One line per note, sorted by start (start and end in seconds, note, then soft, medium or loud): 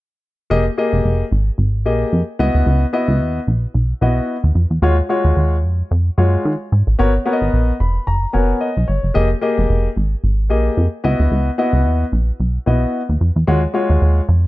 0.50 0.70 F1 loud
0.50 0.63 A#3 medium
0.50 0.63 G4 medium
0.50 0.63 G#4 medium
0.50 0.63 D#5 loud
0.78 1.23 A#3 medium
0.78 1.23 G4 medium
0.78 1.23 G#4 medium
0.78 1.23 D#5 medium
0.93 1.01 F1 loud
1.04 1.24 F1 medium
1.32 1.51 G#1 medium
1.58 1.87 G#1 medium
1.85 2.05 A#1 loud
1.85 2.19 A#3 medium
1.85 2.19 G4 medium
1.85 2.19 G#4 medium
1.85 2.20 D#5 medium
2.13 2.23 F2 medium
2.39 2.50 C#2 loud
2.39 2.84 B3 medium
2.39 2.84 E4 medium
2.39 2.84 F#4 medium
2.39 2.84 D#5 loud
2.55 2.63 D2 medium
2.66 2.86 C#2 loud
2.93 3.38 B3 medium
2.93 3.39 E4 medium
2.93 3.39 F#4 medium
2.93 3.39 D#5 medium
3.08 3.22 C#2 loud
3.20 3.40 D#2 medium
3.47 3.67 A#1 loud
3.74 3.94 B1 medium
4.01 4.21 B1 medium
4.01 4.35 B3 medium
4.01 4.36 E4 medium
4.01 4.36 F#4 medium
4.01 4.36 D#5 medium
4.44 4.52 D#2 medium
4.55 4.66 F2 medium
4.70 4.79 E2 medium
4.82 5.02 D#2 loud
4.82 4.95 G#3 medium
4.82 4.95 F4 medium
4.82 4.95 F#4 medium
4.82 4.95 C#5 loud
5.09 5.55 G#3 medium
5.09 5.55 F4 medium
5.09 5.55 F#4 medium
5.09 5.55 C#5 medium
5.24 5.33 D#2 medium
5.36 5.65 D#2 medium
5.63 5.83 F2 loud
5.91 6.10 F2 loud
6.18 6.37 F#2 medium
6.18 6.52 G#3 medium
6.18 6.52 F4 medium
6.18 6.52 F#4 medium
6.18 6.52 C#5 medium
6.45 6.56 D#3 medium
6.72 6.83 G#2 medium
6.87 6.96 A1 medium
6.99 7.19 G#1 loud
6.99 7.11 B3 medium
6.99 7.11 F#4 medium
6.99 7.11 A#4 medium
6.99 7.11 C#5 loud
7.25 7.71 B3 medium
7.25 7.71 F#4 medium
7.25 7.71 A#4 medium
7.25 7.33 C#5 medium
7.33 7.75 D#5 medium
7.41 7.50 G#1 medium
7.53 7.72 A#1 medium
7.80 7.99 F1 loud
7.80 8.05 B5 medium
8.07 8.26 F#1 medium
8.07 8.32 A#5 medium
8.33 8.54 F#1 medium
8.33 8.67 B3 medium
8.33 8.68 F#4 medium
8.33 8.68 A#4 medium
8.33 8.68 C#5 medium
8.33 8.59 G#5 medium
8.61 8.86 D#5 medium
8.77 8.85 B1 loud
8.88 8.99 G1 medium
8.88 9.13 C#5 medium
9.03 9.12 F#1 medium
9.14 9.35 F1 loud
9.14 9.27 A#3 medium
9.14 9.27 G4 medium
9.14 9.27 G#4 medium
9.14 9.27 D#5 medium
9.41 9.87 A#3 medium
9.41 9.87 G4 medium
9.41 9.87 G#4 medium
9.41 9.88 D#5 medium
9.58 9.66 F1 loud
9.69 9.89 F1 loud
9.96 10.16 G#1 loud
10.24 10.52 G#1 medium
10.49 10.70 A#1 medium
10.49 10.84 A#3 medium
10.49 10.84 G4 medium
10.49 10.84 G#4 medium
10.49 10.84 D#5 medium
10.77 10.88 F2 loud
11.04 11.15 C#2 loud
11.04 11.48 B3 medium
11.04 11.49 E4 medium
11.04 11.49 F#4 medium
11.04 11.49 D#5 medium
11.20 11.28 D2 medium
11.31 11.50 C#2 loud
11.58 12.03 B3 medium
11.58 12.04 E4 medium
11.58 12.04 F#4 medium
11.58 12.04 D#5 medium
11.73 11.87 C#2 loud
11.85 12.04 D#2 medium
12.12 12.32 A#1 loud
12.40 12.59 B1 medium
12.66 12.86 B1 medium
12.66 13.00 B3 medium
12.66 13.00 E4 medium
12.66 13.01 F#4 medium
12.66 13.01 D#5 medium
13.09 13.17 D#2 medium
13.21 13.31 F2 medium
13.36 13.44 E2 medium
13.47 13.67 D#2 loud
13.47 13.60 G#3 medium
13.47 13.60 F4 medium
13.47 13.60 F#4 medium
13.47 13.60 C#5 medium
13.74 14.19 G#3 medium
13.74 14.20 F4 medium
13.74 14.20 F#4 medium
13.74 14.20 C#5 medium
13.90 13.98 D#2 medium
14.02 14.21 D#2 medium
14.29 14.47 F2 loud